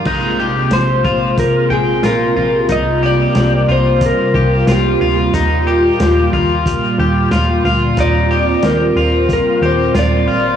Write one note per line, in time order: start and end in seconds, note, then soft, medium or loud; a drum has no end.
0.05 0.64 A#1 loud
0.05 5.29 C3 medium
0.05 2.67 G#3 medium
0.05 7.93 A#3 medium
0.05 0.39 D#4 medium
0.05 10.56 F4 medium
0.05 kick medium
0.05 crash medium
0.40 1.04 G4 medium
0.71 1.00 A#1 medium
0.71 1.40 C5 medium
0.71 snare medium
0.71 closed hi-hat medium
1.04 1.48 A#1 medium
1.04 1.70 F4 medium
1.04 kick medium
1.38 1.69 A#4 medium
1.38 kick medium
1.38 closed hi-hat medium
1.70 2.00 A#1 medium
1.70 2.06 G#4 medium
1.70 2.03 G5 medium
2.03 2.32 A#1 medium
2.03 2.35 F4 medium
2.03 2.72 A#4 medium
2.03 snare loud
2.03 closed hi-hat medium
2.36 2.66 A#1 medium
2.36 2.69 F4 medium
2.69 3.27 C2 medium
2.69 10.56 G3 medium
2.69 3.02 D#4 medium
2.69 3.05 D#5 medium
2.69 kick medium
2.69 closed hi-hat medium
3.03 3.68 G4 medium
3.03 3.72 D5 medium
3.35 3.65 C2 medium
3.35 snare loud
3.35 closed hi-hat medium
3.69 4.12 C2 medium
3.69 4.34 F4 medium
3.69 4.04 C5 medium
4.01 kick medium
4.01 closed hi-hat medium
4.06 4.72 A#4 medium
4.34 4.63 C2 loud
4.34 4.68 G4 medium
4.34 kick medium
4.67 4.97 C2 medium
4.67 5.00 F4 medium
4.67 snare loud
4.67 closed hi-hat medium
4.72 5.16 G4 medium
5.01 5.30 D2 medium
5.01 5.34 F4 medium
5.33 5.91 D#2 loud
5.33 10.56 A#2 medium
5.33 5.67 D#4 medium
5.33 kick medium
5.33 closed hi-hat medium
5.67 6.33 G4 medium
6.00 6.29 D#2 loud
6.00 snare loud
6.00 closed hi-hat medium
6.33 6.76 D#2 medium
6.33 6.99 F4 medium
6.33 kick medium
6.66 kick medium
6.66 closed hi-hat medium
6.98 7.27 D#2 medium
6.98 7.31 G4 medium
7.31 7.61 D#2 medium
7.31 7.64 F4 medium
7.31 snare loud
7.31 closed hi-hat medium
7.64 7.93 D2 loud
7.64 7.98 F4 medium
7.97 8.55 D#2 loud
7.97 10.56 C4 medium
7.97 8.31 D#4 medium
7.97 8.67 D5 medium
7.97 kick medium
7.97 closed hi-hat medium
8.31 8.96 G4 medium
8.63 8.92 D#2 loud
8.63 9.32 A#4 medium
8.63 snare loud
8.63 closed hi-hat medium
8.96 9.39 D#2 medium
8.96 9.62 F4 medium
9.29 kick medium
9.29 closed hi-hat medium
9.33 10.26 A#4 medium
9.61 9.91 D#2 medium
9.61 9.95 G4 medium
9.66 9.98 C5 medium
9.95 10.29 D#2 loud
9.95 10.26 F4 medium
9.95 snare loud
9.95 closed hi-hat medium
9.99 10.56 D5 medium
10.27 10.56 G#1 loud
10.27 10.56 F4 medium